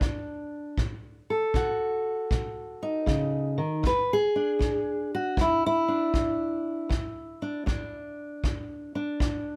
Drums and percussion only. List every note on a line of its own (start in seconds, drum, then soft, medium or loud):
0.01 kick medium
0.78 kick medium
1.54 kick medium
2.31 kick medium
3.07 kick medium
3.84 kick medium
4.61 kick medium
5.37 kick medium
6.14 kick medium
6.91 kick medium
7.67 kick medium
8.44 kick medium
9.20 kick medium